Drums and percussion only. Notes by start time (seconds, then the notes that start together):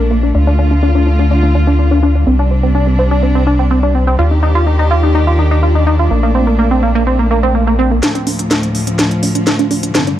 8.03 snare, closed hi-hat
8.15 closed hi-hat
8.27 open hi-hat
8.39 closed hi-hat
8.51 snare, closed hi-hat
8.63 closed hi-hat
8.75 open hi-hat
8.87 closed hi-hat
8.99 snare, closed hi-hat
9.11 closed hi-hat
9.23 open hi-hat
9.35 closed hi-hat
9.47 snare, closed hi-hat
9.59 closed hi-hat
9.71 open hi-hat
9.83 closed hi-hat
9.95 snare, closed hi-hat
10.07 closed hi-hat